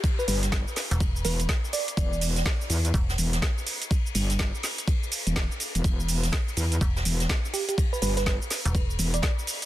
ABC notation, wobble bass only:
X:1
M:4/4
L:1/16
Q:"Swing 16ths" 1/4=124
K:Em
V:1 name="Wobble bass" clef=bass
z2 G,,,3 z4 z E,,,2 z4 | E,,,4 z2 E,,2 z2 E,,,2 z4 | z2 G,,,3 z6 E,,,2 z2 E,,, | E,,,4 z2 E,,2 z2 E,,,2 z4 |
z2 G,,,3 z4 z E,,,2 z4 |]